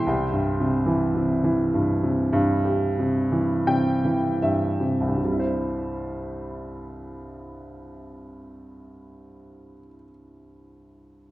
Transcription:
0, 0, Header, 1, 2, 480
1, 0, Start_track
1, 0, Key_signature, 0, "major"
1, 0, Tempo, 1069519
1, 27, Time_signature, 4, 2, 24, 8
1, 508, Tempo, 1192843
1, 988, Tempo, 1348315
1, 1468, Tempo, 1538462
1, 3852, End_track
2, 0, Start_track
2, 0, Title_t, "Grand piano"
2, 0, Program_c, 0, 0
2, 0, Control_c, 0, 64, 127
2, 0, Note_on_c, 0, 76, 70
2, 0, Note_on_c, 0, 79, 69
2, 0, Note_on_c, 0, 84, 96
2, 30, Note_on_c, 0, 36, 61
2, 32, Control_c, 0, 64, 0
2, 107, Control_c, 0, 64, 127
2, 144, Note_on_c, 0, 43, 54
2, 271, Note_on_c, 0, 48, 55
2, 387, Note_on_c, 0, 52, 60
2, 509, Note_off_c, 0, 48, 0
2, 515, Note_on_c, 0, 48, 58
2, 626, Note_off_c, 0, 52, 0
2, 632, Note_on_c, 0, 52, 63
2, 746, Note_off_c, 0, 43, 0
2, 752, Note_on_c, 0, 43, 59
2, 864, Note_off_c, 0, 48, 0
2, 870, Note_on_c, 0, 48, 57
2, 983, Note_off_c, 0, 43, 0
2, 989, Note_on_c, 0, 43, 79
2, 1104, Note_on_c, 0, 67, 51
2, 1219, Note_off_c, 0, 48, 0
2, 1225, Note_on_c, 0, 48, 58
2, 1337, Note_off_c, 0, 52, 0
2, 1342, Note_on_c, 0, 52, 57
2, 1457, Note_off_c, 0, 79, 0
2, 1457, Note_off_c, 0, 84, 0
2, 1458, Note_off_c, 0, 76, 0
2, 1463, Note_off_c, 0, 48, 0
2, 1468, Note_on_c, 0, 79, 68
2, 1469, Note_on_c, 0, 48, 60
2, 1581, Note_off_c, 0, 52, 0
2, 1585, Note_on_c, 0, 52, 52
2, 1686, Note_off_c, 0, 79, 0
2, 1699, Note_off_c, 0, 43, 0
2, 1702, Note_on_c, 0, 76, 64
2, 1703, Note_on_c, 0, 43, 54
2, 1815, Note_off_c, 0, 48, 0
2, 1820, Note_on_c, 0, 48, 53
2, 1879, Note_off_c, 0, 36, 0
2, 1884, Note_on_c, 0, 36, 49
2, 1904, Note_off_c, 0, 43, 0
2, 1908, Note_on_c, 0, 43, 44
2, 1929, Note_off_c, 0, 48, 0
2, 1929, Note_off_c, 0, 67, 0
2, 1930, Note_off_c, 0, 76, 0
2, 1932, Note_off_c, 0, 52, 0
2, 1934, Note_on_c, 0, 48, 38
2, 1944, Control_c, 0, 64, 0
2, 1959, Note_on_c, 0, 55, 46
2, 1982, Note_on_c, 0, 64, 46
2, 2004, Control_c, 0, 64, 127
2, 2005, Note_on_c, 0, 72, 54
2, 3353, Note_off_c, 0, 36, 0
2, 3377, Note_off_c, 0, 43, 0
2, 3403, Note_off_c, 0, 48, 0
2, 3428, Note_off_c, 0, 55, 0
2, 3450, Note_off_c, 0, 64, 0
2, 3474, Note_off_c, 0, 72, 0
2, 3852, End_track
0, 0, End_of_file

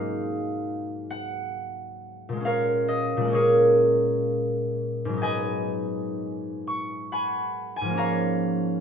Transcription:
0, 0, Header, 1, 2, 480
1, 0, Start_track
1, 0, Tempo, 892857
1, 1314, Time_signature, 3, 2, 24, 8
1, 2261, Tempo, 986842
1, 3221, Tempo, 937500
1, 3701, Tempo, 872093
1, 4630, End_track
2, 0, Start_track
2, 0, Title_t, "Harp"
2, 0, Program_c, 0, 46
2, 0, Note_on_c, 0, 44, 63
2, 0, Note_on_c, 0, 56, 51
2, 0, Note_on_c, 0, 58, 44
2, 0, Note_on_c, 0, 63, 52
2, 0, Note_on_c, 0, 75, 83
2, 0, Note_on_c, 0, 77, 80
2, 594, Note_on_c, 0, 78, 96
2, 1101, Note_off_c, 0, 77, 0
2, 1230, Note_on_c, 0, 46, 52
2, 1242, Note_off_c, 0, 56, 0
2, 1249, Note_on_c, 0, 56, 48
2, 1266, Note_off_c, 0, 58, 0
2, 1272, Note_on_c, 0, 58, 49
2, 1292, Note_on_c, 0, 61, 50
2, 1297, Note_off_c, 0, 44, 0
2, 1316, Note_on_c, 0, 77, 92
2, 1321, Note_on_c, 0, 70, 68
2, 1322, Note_on_c, 0, 73, 66
2, 1328, Note_off_c, 0, 63, 0
2, 1341, Note_off_c, 0, 75, 0
2, 1550, Note_on_c, 0, 75, 87
2, 1697, Note_off_c, 0, 46, 0
2, 1704, Note_on_c, 0, 46, 64
2, 1718, Note_off_c, 0, 56, 0
2, 1725, Note_on_c, 0, 56, 52
2, 1738, Note_off_c, 0, 58, 0
2, 1745, Note_on_c, 0, 58, 58
2, 1754, Note_off_c, 0, 75, 0
2, 1760, Note_on_c, 0, 75, 63
2, 1765, Note_off_c, 0, 61, 0
2, 1772, Note_on_c, 0, 61, 51
2, 1783, Note_off_c, 0, 73, 0
2, 1789, Note_on_c, 0, 73, 78
2, 1793, Note_off_c, 0, 70, 0
2, 1797, Note_on_c, 0, 68, 69
2, 1801, Note_on_c, 0, 70, 62
2, 1813, Note_off_c, 0, 75, 0
2, 1813, Note_off_c, 0, 78, 0
2, 2672, Note_on_c, 0, 44, 60
2, 2692, Note_on_c, 0, 54, 47
2, 2712, Note_on_c, 0, 59, 47
2, 2731, Note_off_c, 0, 46, 0
2, 2731, Note_on_c, 0, 63, 50
2, 2750, Note_off_c, 0, 58, 0
2, 2753, Note_on_c, 0, 80, 96
2, 2757, Note_on_c, 0, 71, 70
2, 2758, Note_on_c, 0, 75, 75
2, 2762, Note_off_c, 0, 61, 0
2, 2769, Note_off_c, 0, 77, 0
2, 2770, Note_off_c, 0, 73, 0
2, 2774, Note_off_c, 0, 70, 0
2, 3474, Note_on_c, 0, 85, 89
2, 3697, Note_off_c, 0, 56, 0
2, 3699, Note_off_c, 0, 80, 0
2, 3703, Note_on_c, 0, 78, 69
2, 3704, Note_on_c, 0, 83, 82
2, 3705, Note_on_c, 0, 80, 68
2, 3770, Note_off_c, 0, 68, 0
2, 3864, Note_off_c, 0, 85, 0
2, 4050, Note_off_c, 0, 80, 0
2, 4057, Note_on_c, 0, 80, 99
2, 4077, Note_off_c, 0, 44, 0
2, 4084, Note_on_c, 0, 44, 59
2, 4100, Note_on_c, 0, 53, 50
2, 4127, Note_on_c, 0, 58, 55
2, 4150, Note_on_c, 0, 61, 49
2, 4157, Note_off_c, 0, 54, 0
2, 4168, Note_off_c, 0, 59, 0
2, 4174, Note_on_c, 0, 82, 96
2, 4178, Note_on_c, 0, 73, 76
2, 4179, Note_off_c, 0, 63, 0
2, 4181, Note_on_c, 0, 77, 71
2, 4190, Note_off_c, 0, 78, 0
2, 4190, Note_off_c, 0, 83, 0
2, 4194, Note_off_c, 0, 71, 0
2, 4194, Note_off_c, 0, 75, 0
2, 4258, Note_off_c, 0, 80, 0
2, 4630, Note_off_c, 0, 44, 0
2, 4630, Note_off_c, 0, 53, 0
2, 4630, Note_off_c, 0, 58, 0
2, 4630, Note_off_c, 0, 61, 0
2, 4630, Note_off_c, 0, 73, 0
2, 4630, Note_off_c, 0, 77, 0
2, 4630, Note_off_c, 0, 82, 0
2, 4630, End_track
0, 0, End_of_file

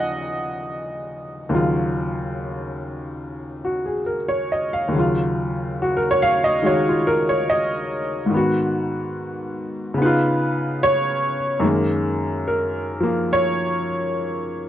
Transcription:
0, 0, Header, 1, 2, 480
1, 0, Start_track
1, 0, Key_signature, -6, "minor"
1, 0, Tempo, 832178
1, 877, Time_signature, 4, 2, 24, 8
1, 1362, Tempo, 852273
1, 4242, Tempo, 829876
1, 8415, End_track
2, 0, Start_track
2, 0, Title_t, "Upright piano"
2, 0, Program_c, 0, 0
2, 0, Control_c, 0, 64, 127
2, 0, Note_on_c, 0, 39, 50
2, 0, Note_on_c, 0, 49, 46
2, 0, Note_on_c, 0, 53, 56
2, 0, Note_on_c, 0, 54, 43
2, 0, Note_on_c, 0, 75, 86
2, 0, Note_on_c, 0, 77, 100
2, 0, Note_on_c, 0, 78, 82
2, 0, Note_on_c, 0, 80, 88
2, 852, Note_off_c, 0, 39, 0
2, 861, Note_on_c, 0, 39, 51
2, 862, Note_off_c, 0, 49, 0
2, 870, Note_on_c, 0, 49, 44
2, 876, Note_off_c, 0, 54, 0
2, 884, Note_off_c, 0, 53, 0
2, 885, Note_on_c, 0, 54, 45
2, 893, Note_on_c, 0, 65, 54
2, 2086, Note_on_c, 0, 66, 42
2, 2205, Note_on_c, 0, 68, 37
2, 2238, Note_off_c, 0, 66, 0
2, 2294, Note_off_c, 0, 75, 0
2, 2320, Note_on_c, 0, 70, 43
2, 2378, Note_off_c, 0, 68, 0
2, 2445, Note_on_c, 0, 73, 52
2, 2553, Note_off_c, 0, 70, 0
2, 2578, Note_on_c, 0, 75, 46
2, 2656, Note_off_c, 0, 73, 0
2, 2697, Note_off_c, 0, 77, 0
2, 2697, Note_on_c, 0, 77, 53
2, 2726, Note_off_c, 0, 75, 0
2, 2773, Note_off_c, 0, 39, 0
2, 2782, Note_on_c, 0, 39, 51
2, 2795, Note_off_c, 0, 49, 0
2, 2804, Note_on_c, 0, 49, 47
2, 2816, Note_off_c, 0, 54, 0
2, 2823, Note_off_c, 0, 65, 0
2, 2824, Control_c, 0, 64, 0
2, 2824, Note_on_c, 0, 54, 48
2, 2826, Note_off_c, 0, 80, 0
2, 2828, Note_off_c, 0, 78, 0
2, 2842, Note_on_c, 0, 65, 53
2, 2863, Note_off_c, 0, 77, 0
2, 2918, Control_c, 0, 64, 127
2, 3310, Note_on_c, 0, 66, 61
2, 3393, Note_on_c, 0, 70, 64
2, 3405, Note_off_c, 0, 66, 0
2, 3447, Note_off_c, 0, 70, 0
2, 3472, Note_on_c, 0, 73, 83
2, 3537, Note_on_c, 0, 77, 94
2, 3617, Note_off_c, 0, 73, 0
2, 3649, Note_off_c, 0, 77, 0
2, 3660, Note_on_c, 0, 75, 72
2, 3751, Note_off_c, 0, 75, 0
2, 3761, Note_on_c, 0, 51, 40
2, 3768, Note_on_c, 0, 56, 40
2, 3777, Note_on_c, 0, 66, 49
2, 3785, Note_on_c, 0, 73, 68
2, 3903, Note_off_c, 0, 65, 0
2, 3911, Note_on_c, 0, 65, 53
2, 3931, Note_off_c, 0, 73, 0
2, 4014, Note_on_c, 0, 70, 80
2, 4073, Note_off_c, 0, 65, 0
2, 4125, Note_off_c, 0, 70, 0
2, 4138, Note_on_c, 0, 73, 68
2, 4227, Note_off_c, 0, 73, 0
2, 4254, Note_on_c, 0, 75, 71
2, 4696, Note_on_c, 0, 44, 52
2, 4710, Note_off_c, 0, 39, 0
2, 4710, Note_off_c, 0, 51, 0
2, 4710, Note_off_c, 0, 75, 0
2, 4719, Note_on_c, 0, 51, 55
2, 4721, Note_off_c, 0, 49, 0
2, 4727, Note_off_c, 0, 56, 0
2, 4732, Note_off_c, 0, 54, 0
2, 4732, Note_off_c, 0, 66, 0
2, 4734, Control_c, 0, 64, 0
2, 4742, Note_on_c, 0, 59, 49
2, 4757, Note_on_c, 0, 66, 64
2, 4830, Control_c, 0, 64, 127
2, 5669, Note_on_c, 0, 49, 61
2, 5674, Note_off_c, 0, 44, 0
2, 5680, Note_off_c, 0, 59, 0
2, 5685, Note_off_c, 0, 51, 0
2, 5689, Note_on_c, 0, 59, 50
2, 5697, Control_c, 0, 64, 0
2, 5704, Note_off_c, 0, 66, 0
2, 5712, Note_on_c, 0, 63, 50
2, 5714, Note_on_c, 0, 71, 73
2, 5734, Note_on_c, 0, 65, 68
2, 5785, Control_c, 0, 64, 127
2, 6155, Note_off_c, 0, 71, 0
2, 6183, Note_on_c, 0, 73, 97
2, 6484, Note_off_c, 0, 73, 0
2, 6626, Note_on_c, 0, 42, 60
2, 6634, Note_off_c, 0, 49, 0
2, 6636, Note_on_c, 0, 51, 51
2, 6643, Note_off_c, 0, 59, 0
2, 6647, Note_on_c, 0, 56, 52
2, 6652, Control_c, 0, 64, 0
2, 6654, Note_on_c, 0, 58, 55
2, 6655, Note_off_c, 0, 63, 0
2, 6666, Note_off_c, 0, 65, 0
2, 6752, Control_c, 0, 64, 127
2, 7135, Note_on_c, 0, 70, 65
2, 7440, Note_on_c, 0, 53, 48
2, 7449, Note_off_c, 0, 58, 0
2, 7457, Note_on_c, 0, 58, 53
2, 7588, Note_off_c, 0, 70, 0
2, 7627, Note_on_c, 0, 73, 93
2, 7926, Note_off_c, 0, 73, 0
2, 8415, Note_off_c, 0, 42, 0
2, 8415, Note_off_c, 0, 51, 0
2, 8415, Note_off_c, 0, 53, 0
2, 8415, Note_off_c, 0, 56, 0
2, 8415, Note_off_c, 0, 58, 0
2, 8415, End_track
0, 0, End_of_file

